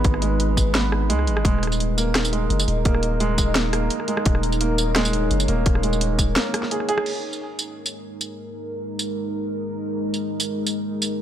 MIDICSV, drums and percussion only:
0, 0, Header, 1, 2, 480
1, 0, Start_track
1, 0, Key_signature, 5, "minor"
1, 0, Tempo, 350877
1, 63, Time_signature, 4, 2, 24, 8
1, 15346, End_track
2, 0, Start_track
2, 0, Title_t, "Drums"
2, 61, Note_on_c, 9, 42, 77
2, 64, Note_on_c, 9, 36, 123
2, 190, Note_on_c, 9, 37, 51
2, 198, Note_off_c, 9, 42, 0
2, 201, Note_off_c, 9, 36, 0
2, 301, Note_on_c, 9, 42, 63
2, 327, Note_off_c, 9, 37, 0
2, 437, Note_off_c, 9, 42, 0
2, 545, Note_on_c, 9, 42, 76
2, 681, Note_off_c, 9, 42, 0
2, 782, Note_on_c, 9, 36, 61
2, 784, Note_on_c, 9, 54, 65
2, 919, Note_off_c, 9, 36, 0
2, 921, Note_off_c, 9, 54, 0
2, 1025, Note_on_c, 9, 38, 122
2, 1025, Note_on_c, 9, 42, 76
2, 1162, Note_off_c, 9, 38, 0
2, 1162, Note_off_c, 9, 42, 0
2, 1262, Note_on_c, 9, 37, 74
2, 1399, Note_off_c, 9, 37, 0
2, 1504, Note_on_c, 9, 42, 77
2, 1627, Note_on_c, 9, 37, 34
2, 1640, Note_off_c, 9, 42, 0
2, 1743, Note_on_c, 9, 42, 59
2, 1763, Note_off_c, 9, 37, 0
2, 1870, Note_on_c, 9, 37, 76
2, 1880, Note_off_c, 9, 42, 0
2, 1981, Note_on_c, 9, 36, 119
2, 1986, Note_on_c, 9, 42, 74
2, 2007, Note_off_c, 9, 37, 0
2, 2113, Note_on_c, 9, 37, 23
2, 2118, Note_off_c, 9, 36, 0
2, 2123, Note_off_c, 9, 42, 0
2, 2168, Note_off_c, 9, 37, 0
2, 2168, Note_on_c, 9, 37, 30
2, 2228, Note_off_c, 9, 37, 0
2, 2228, Note_on_c, 9, 37, 35
2, 2228, Note_on_c, 9, 42, 62
2, 2289, Note_off_c, 9, 37, 0
2, 2289, Note_on_c, 9, 37, 40
2, 2351, Note_on_c, 9, 54, 37
2, 2365, Note_off_c, 9, 42, 0
2, 2426, Note_off_c, 9, 37, 0
2, 2467, Note_on_c, 9, 42, 74
2, 2488, Note_off_c, 9, 54, 0
2, 2604, Note_off_c, 9, 42, 0
2, 2706, Note_on_c, 9, 54, 68
2, 2842, Note_off_c, 9, 54, 0
2, 2945, Note_on_c, 9, 37, 76
2, 2945, Note_on_c, 9, 38, 119
2, 2945, Note_on_c, 9, 42, 76
2, 3074, Note_on_c, 9, 54, 64
2, 3082, Note_off_c, 9, 37, 0
2, 3082, Note_off_c, 9, 38, 0
2, 3082, Note_off_c, 9, 42, 0
2, 3185, Note_on_c, 9, 42, 64
2, 3211, Note_off_c, 9, 54, 0
2, 3322, Note_off_c, 9, 42, 0
2, 3424, Note_on_c, 9, 42, 70
2, 3549, Note_on_c, 9, 54, 66
2, 3560, Note_off_c, 9, 42, 0
2, 3666, Note_on_c, 9, 42, 58
2, 3686, Note_off_c, 9, 54, 0
2, 3802, Note_off_c, 9, 42, 0
2, 3902, Note_on_c, 9, 42, 76
2, 3905, Note_on_c, 9, 36, 111
2, 4028, Note_on_c, 9, 37, 52
2, 4038, Note_off_c, 9, 42, 0
2, 4041, Note_off_c, 9, 36, 0
2, 4142, Note_on_c, 9, 42, 60
2, 4165, Note_off_c, 9, 37, 0
2, 4279, Note_off_c, 9, 42, 0
2, 4383, Note_on_c, 9, 42, 74
2, 4519, Note_off_c, 9, 42, 0
2, 4623, Note_on_c, 9, 54, 70
2, 4625, Note_on_c, 9, 36, 59
2, 4760, Note_off_c, 9, 54, 0
2, 4762, Note_off_c, 9, 36, 0
2, 4862, Note_on_c, 9, 38, 116
2, 4862, Note_on_c, 9, 42, 75
2, 4999, Note_off_c, 9, 38, 0
2, 4999, Note_off_c, 9, 42, 0
2, 5103, Note_on_c, 9, 37, 77
2, 5103, Note_on_c, 9, 42, 62
2, 5240, Note_off_c, 9, 37, 0
2, 5240, Note_off_c, 9, 42, 0
2, 5341, Note_on_c, 9, 42, 71
2, 5468, Note_on_c, 9, 37, 35
2, 5478, Note_off_c, 9, 42, 0
2, 5580, Note_on_c, 9, 42, 56
2, 5605, Note_off_c, 9, 37, 0
2, 5707, Note_on_c, 9, 37, 80
2, 5717, Note_off_c, 9, 42, 0
2, 5821, Note_on_c, 9, 42, 79
2, 5827, Note_on_c, 9, 36, 116
2, 5844, Note_off_c, 9, 37, 0
2, 5949, Note_on_c, 9, 37, 55
2, 5958, Note_off_c, 9, 42, 0
2, 5964, Note_off_c, 9, 36, 0
2, 6064, Note_on_c, 9, 42, 64
2, 6085, Note_off_c, 9, 37, 0
2, 6189, Note_on_c, 9, 54, 39
2, 6201, Note_off_c, 9, 42, 0
2, 6302, Note_on_c, 9, 42, 78
2, 6326, Note_off_c, 9, 54, 0
2, 6439, Note_off_c, 9, 42, 0
2, 6542, Note_on_c, 9, 54, 71
2, 6678, Note_off_c, 9, 54, 0
2, 6782, Note_on_c, 9, 37, 82
2, 6782, Note_on_c, 9, 38, 115
2, 6782, Note_on_c, 9, 42, 77
2, 6908, Note_on_c, 9, 54, 66
2, 6919, Note_off_c, 9, 37, 0
2, 6919, Note_off_c, 9, 38, 0
2, 6919, Note_off_c, 9, 42, 0
2, 7022, Note_on_c, 9, 42, 63
2, 7045, Note_off_c, 9, 54, 0
2, 7159, Note_off_c, 9, 42, 0
2, 7261, Note_on_c, 9, 42, 75
2, 7386, Note_on_c, 9, 54, 66
2, 7397, Note_off_c, 9, 42, 0
2, 7501, Note_on_c, 9, 42, 58
2, 7523, Note_off_c, 9, 54, 0
2, 7638, Note_off_c, 9, 42, 0
2, 7741, Note_on_c, 9, 42, 80
2, 7745, Note_on_c, 9, 36, 114
2, 7870, Note_on_c, 9, 37, 55
2, 7877, Note_off_c, 9, 42, 0
2, 7882, Note_off_c, 9, 36, 0
2, 7981, Note_on_c, 9, 42, 68
2, 8007, Note_off_c, 9, 37, 0
2, 8110, Note_on_c, 9, 54, 38
2, 8117, Note_off_c, 9, 42, 0
2, 8224, Note_on_c, 9, 42, 82
2, 8247, Note_off_c, 9, 54, 0
2, 8361, Note_off_c, 9, 42, 0
2, 8462, Note_on_c, 9, 42, 39
2, 8462, Note_on_c, 9, 54, 72
2, 8463, Note_on_c, 9, 36, 59
2, 8599, Note_off_c, 9, 36, 0
2, 8599, Note_off_c, 9, 42, 0
2, 8599, Note_off_c, 9, 54, 0
2, 8704, Note_on_c, 9, 38, 116
2, 8704, Note_on_c, 9, 42, 79
2, 8840, Note_off_c, 9, 38, 0
2, 8840, Note_off_c, 9, 42, 0
2, 8946, Note_on_c, 9, 37, 82
2, 8946, Note_on_c, 9, 42, 67
2, 9070, Note_on_c, 9, 38, 36
2, 9083, Note_off_c, 9, 37, 0
2, 9083, Note_off_c, 9, 42, 0
2, 9183, Note_on_c, 9, 42, 77
2, 9207, Note_off_c, 9, 38, 0
2, 9305, Note_on_c, 9, 37, 38
2, 9320, Note_off_c, 9, 42, 0
2, 9420, Note_on_c, 9, 42, 62
2, 9442, Note_off_c, 9, 37, 0
2, 9543, Note_on_c, 9, 37, 87
2, 9557, Note_off_c, 9, 42, 0
2, 9659, Note_on_c, 9, 49, 77
2, 9680, Note_off_c, 9, 37, 0
2, 9796, Note_off_c, 9, 49, 0
2, 10025, Note_on_c, 9, 54, 33
2, 10162, Note_off_c, 9, 54, 0
2, 10379, Note_on_c, 9, 54, 61
2, 10516, Note_off_c, 9, 54, 0
2, 10747, Note_on_c, 9, 54, 59
2, 10884, Note_off_c, 9, 54, 0
2, 11229, Note_on_c, 9, 54, 59
2, 11365, Note_off_c, 9, 54, 0
2, 12301, Note_on_c, 9, 54, 58
2, 12438, Note_off_c, 9, 54, 0
2, 13869, Note_on_c, 9, 54, 33
2, 14006, Note_off_c, 9, 54, 0
2, 14224, Note_on_c, 9, 54, 59
2, 14361, Note_off_c, 9, 54, 0
2, 14590, Note_on_c, 9, 54, 54
2, 14727, Note_off_c, 9, 54, 0
2, 15071, Note_on_c, 9, 54, 57
2, 15208, Note_off_c, 9, 54, 0
2, 15346, End_track
0, 0, End_of_file